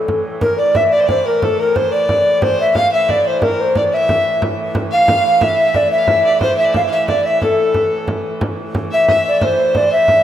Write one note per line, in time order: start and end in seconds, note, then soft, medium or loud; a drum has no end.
0.00 0.42 A2 medium
0.00 0.43 E3 medium
0.00 0.25 A4 medium
0.08 frame drum medium
0.41 4.43 A2 medium
0.41 4.42 E3 medium
0.41 0.57 A#4 medium
0.41 0.60 A#4 medium
0.41 frame drum medium
0.58 0.78 D5 medium
0.58 0.74 D5 medium
0.75 0.82 E5 medium
0.75 0.95 E5 medium
0.75 frame drum medium
0.92 1.02 D5 medium
0.92 1.09 D5 medium
1.00 1.08 C5 medium
1.06 1.25 C5 medium
1.06 1.28 D5 medium
1.06 frame drum medium
1.26 1.46 A#4 medium
1.26 1.44 A#4 medium
1.26 frame drum soft
1.42 1.59 A4 medium
1.42 1.61 A4 medium
1.42 frame drum medium
1.59 1.78 A#4 medium
1.76 1.92 C5 medium
1.76 1.93 C5 medium
1.76 frame drum medium
1.92 2.42 D5 medium
1.92 2.44 D5 medium
2.09 frame drum medium
2.25 frame drum soft
2.42 2.59 C5 medium
2.42 2.73 C5 medium
2.42 frame drum medium
2.61 2.75 E5 medium
2.74 2.90 F5 medium
2.74 2.92 F5 medium
2.74 frame drum medium
2.92 3.10 E5 medium
2.92 3.12 E5 medium
3.09 3.25 D5 medium
3.09 3.29 D5 medium
3.09 frame drum medium
3.26 3.41 C5 medium
3.26 3.44 C5 medium
3.26 frame drum soft
3.42 3.73 A#4 medium
3.42 3.62 A#4 medium
3.42 frame drum medium
3.61 3.79 C5 medium
3.75 3.84 D5 medium
3.75 3.96 D5 medium
3.75 frame drum medium
3.93 4.39 E5 medium
3.93 4.43 E5 medium
4.09 frame drum medium
4.26 frame drum soft
4.42 8.42 A2 medium
4.42 8.42 E3 medium
4.42 frame drum medium
4.75 frame drum medium
4.91 5.43 F5 medium
4.91 5.23 F5 medium
5.08 frame drum medium
5.25 5.45 F5 medium
5.25 frame drum soft
5.41 5.50 E5 medium
5.41 5.77 E5 loud
5.41 frame drum medium
5.48 5.57 F5 medium
5.55 5.91 E5 medium
5.74 5.91 D5 medium
5.74 frame drum medium
5.91 6.38 E5 loud
5.91 6.00 E5 medium
5.99 6.08 F5 medium
6.07 6.24 E5 medium
6.07 frame drum medium
6.25 6.40 D5 medium
6.41 6.57 C5 medium
6.41 6.58 C5 medium
6.41 frame drum medium
6.57 6.66 E5 medium
6.57 6.74 E5 medium
6.65 6.74 D5 medium
6.72 6.87 E5 medium
6.72 6.82 F5 medium
6.72 frame drum medium
6.88 7.07 E5 medium
6.88 6.93 F5 medium
6.92 7.11 E5 medium
7.08 7.23 D5 medium
7.08 7.27 D5 medium
7.08 frame drum medium
7.25 7.44 E5 medium
7.25 7.42 E5 medium
7.25 frame drum soft
7.42 8.09 A4 medium
7.42 8.05 A4 medium
7.42 frame drum medium
7.59 frame drum soft
7.74 frame drum medium
8.08 frame drum medium
8.41 10.23 A2 medium
8.41 10.23 E3 medium
8.41 frame drum medium
8.75 frame drum medium
8.91 9.07 E5 medium
8.91 9.23 E5 loud
9.08 9.44 E5 medium
9.08 frame drum medium
9.28 9.45 D5 medium
9.41 9.92 C5 medium
9.41 9.79 C5 medium
9.41 frame drum medium
9.75 9.92 D5 medium
9.75 frame drum medium
9.91 10.23 E5 medium
10.08 frame drum medium